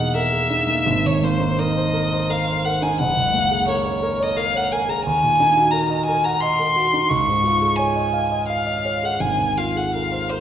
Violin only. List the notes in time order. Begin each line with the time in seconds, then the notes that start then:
Already playing: F#5
0.16 E5
1.06 C#5
1.24 C5
1.59 D#5
2.30 F5
2.65 F#5
2.83 G#5
2.99 F#5
3.68 C#5
4.23 D#5
4.37 F5
4.56 F#5
4.72 G#5
4.89 A#5
5.05 G#5
5.71 A#5
6.05 G#5
6.24 A#5
6.40 C6
7.09 C#6
7.76 G#5
8.48 F5
9.05 F#5
9.20 G#5
9.57 F5
9.77 F#5
9.95 F5
10.30 C5